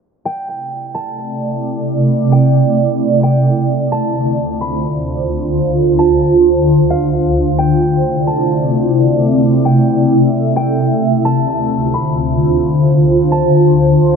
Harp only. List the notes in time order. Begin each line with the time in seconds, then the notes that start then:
0.25 G5
0.95 A5
2.32 G5
3.23 G5
3.92 A5
4.61 B5
5.99 A5
6.90 F5
7.58 G5
8.27 A5
9.65 G5
10.56 G5
11.25 A5
11.94 B5
13.32 A5